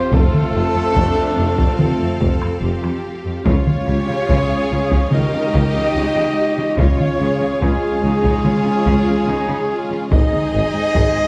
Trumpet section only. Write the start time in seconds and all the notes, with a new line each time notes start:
Already playing: C5
0.12 A4
1.79 A4
3.46 C#5
5.13 D#5
6.79 C#5
7.62 G#4
10.12 D#5